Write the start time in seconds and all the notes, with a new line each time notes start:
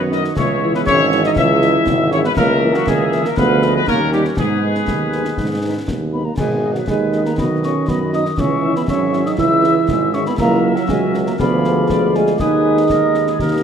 Already playing: F#2 D#3 B3 D#5
0.12 F#3 B3 D#4 A#4 D#5, snare
0.25 snare
0.36 C#2 E3 G#3 C#4 G#4 C#5 E5, concert bass drum, snare
0.62 E3 G#3 E4
0.74 B3 B4, snare
0.86 G#1 C#4 G#4 C#5 E5, concert bass drum, snare
1.12 E3 G#3 E4, snare
1.24 D#4 D#5, snare
1.36 C#2 E4 G#4 E5, concert bass drum, snare
1.62 E3 G#3 E4, snare
1.87 G#1, concert bass drum, snare
2.12 E3 G#3 C#4 E4 C#5, snare
2.24 B3 B4, snare
2.37 C#2 E3 A#3 A#4 E5, concert bass drum, snare, crash
2.62 E3 A#3 E4
2.74 F#3 F#4, snare
2.87 C#2 G#3 G#4, concert bass drum, snare
3.12 E3 A#3 E4, snare
3.25 A#3 A#4, snare
3.35 D2 F3 G#3 B3 G#4 B4 F5, concert bass drum, snare
3.62 G#3 D4 F4 D#5, snare
3.76 B3 B4
3.87 D#2 G3 A#3 C#4 G4 A#4 C#5, concert bass drum, snare
4.13 G3 C#4 D#4 G4, snare
4.25 snare
4.37 G#2 G#3 B3 G#4 B4, concert bass drum, snare
4.63 G#3 B3 D#4
4.75 snare
4.88 D#2, concert bass drum, snare
5.13 G#3 B3 D#4, snare
5.25 snare
5.38 G#2, concert bass drum, snare
5.63 G#3 B3 D#4
5.87 D#2, concert bass drum, snare
6.13 G#3 B3 D#4 B5
6.25 A#3 A#5
6.37 G#1 B2 G#3 G#4 B4 G#5, concert bass drum, snare, crash
6.63 B3 D#4 G#4 D#5
6.75 F#3 F#5, snare
6.87 D#2 D#3 G#3 G#4 B4 G#5, concert bass drum, snare
7.13 B3 D#4 G#4 D#5, snare
7.26 A#3 A#5, snare
7.38 B1 B3 F#4 D#5 B5, concert bass drum, snare
7.63 B3 C#4 D#4 F#4 D#5 C#6, snare
7.88 F#2 B3 F#4 D#5 B5, concert bass drum, snare
8.13 B3 D#4 F#4 D#5 D#6, snare
8.25 snare
8.37 C#2 E3 C#4 G#4 E5 C#6, concert bass drum, snare
8.63 G#3 C#4 E4 E5
8.76 B3 B5, snare
8.88 G#1 F#3 C#4 G#4 E5 C#6, concert bass drum, snare
9.12 G#3 C#4 E4 E5, snare
9.26 D#4 D#6, snare
9.38 C#2 E3 E4 G#4 E5 E6, concert bass drum, snare
9.63 G#3 C#4 E4 E5, snare
9.88 G#1 G#3, concert bass drum, snare
10.13 G#3 C#4 E4 E5 C#6, snare
10.26 B3 B5, snare
10.38 C#2 F#3 A#3 C#4 E4 A#4 E5 A#5, concert bass drum, snare, crash
10.76 F#3 F#5, snare
10.88 C#2 G#3 F#4 G#5, concert bass drum, snare
11.14 snare
11.27 A#3 A#5, snare
11.39 D2 F3 G#3 B3 F4 G#4 D5 F5 B5, concert bass drum, snare
11.64 snare
11.89 D2 D5, concert bass drum, snare
12.15 G#3 G#5, snare
12.27 snare
12.39 D#2 D#3 G#3 D#4 G#4 B4 G#5 D#6, concert bass drum, snare
12.77 snare
12.90 D#2 A#4, concert bass drum, snare
13.15 snare
13.27 G#4, snare
13.40 D#2 A#3 D#4 G4 A#4 D#5, concert bass drum, snare